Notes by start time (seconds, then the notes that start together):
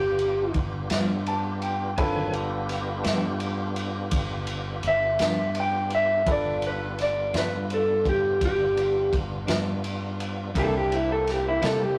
Already playing: G1 B3 D4 F4 G4 A4 D5
0.19 ride
0.54 G1, kick, ride
0.90 G2 F3 B3 D4, snare, ride
1.26 A5, ride
1.62 G5, ride
1.96 G1 D#3 F#3 C4 D4 F4 A4 B4 G#5, kick, ride
2.32 B3 D4 F4 G4, ride
2.69 snare, ride
3.04 G2 F3 B3 D4, snare, ride
3.40 ride
3.76 ride
4.11 G1, kick, ride
4.47 ride
4.83 G1, ride
4.88 E5
5.19 G2 F3 B3 D4, snare, ride
5.55 ride
5.60 G5
5.90 ride
5.95 E5
6.25 G1 G3 B3 D4 F4 A4 B4, kick, ride
6.32 D5
6.62 ride
6.67 B4
6.99 D5, snare, ride
7.34 G2 F3 B3 D4, snare, ride
7.38 B4
7.70 A4, ride
8.05 G4, kick, ride
8.41 G1 G4, kick, ride
8.77 ride
9.13 G1, kick, ride
9.47 G2 F3 B3 D4, snare, ride
9.84 ride
10.20 ride
10.54 C2 C3 G3 A#3 C4 D4 E4 G4 A#4, kick, ride
10.59 A4
10.77 G4
10.92 E4, ride
11.12 A4
11.27 G4, snare, ride
11.48 E4
11.62 C3 G3 A#3 E4 A4, snare, ride
11.83 G4